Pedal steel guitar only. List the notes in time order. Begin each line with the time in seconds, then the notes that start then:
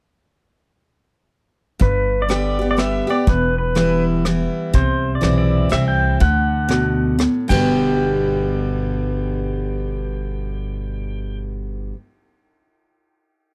1.82 B4
2.22 D5
2.32 D5
2.71 D5
2.79 E5
3.10 D5
3.29 B4
3.58 B4
4.75 C5
5.15 D5
5.38 D5
5.72 E5
5.88 G5
6.21 F#5
7.49 G5